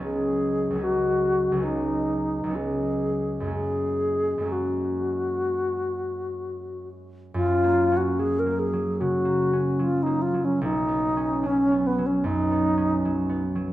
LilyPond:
<<
  \new Staff \with { instrumentName = "Alto flute" } { \time 4/4 \key fis \major \tempo 4 = 73 gis'4 fis'4 dis'4 gis'4 | gis'4 fis'2~ fis'8 r8 | eis'8. fis'16 gis'16 ais'16 gis'8 fis'4 eis'16 dis'16 eis'16 cis'16 | dis'4 cis'8 b16 cis'16 dis'4. r8 | }
  \new Staff \with { instrumentName = "Harp" } { \time 4/4 \key fis \major << { <cis, fis b cis' dis'>4 <cis, fis b cis' dis'>4 <cis, fis b cis' dis'>4 <cis, fis b cis' dis'>4 | <fis, gis ais cis' fis'>4 <fis, gis ais cis' fis'>2.~ | <fis, gis ais cis' fis'>1~ | <fis, gis ais cis' fis'>1 | } \\ { r1 | r1 | \tuplet 3/2 { fis,8 ais8 cis'8 fis8 ais8 fis8 cis8 ais8 cis'8 fis8 ais8 fis8 } | \tuplet 3/2 { b,,8 b8 cis'8 fis8 b8 fis8 fis,8 b8 cis'8 fis8 b8 fis8 } | } >> }
>>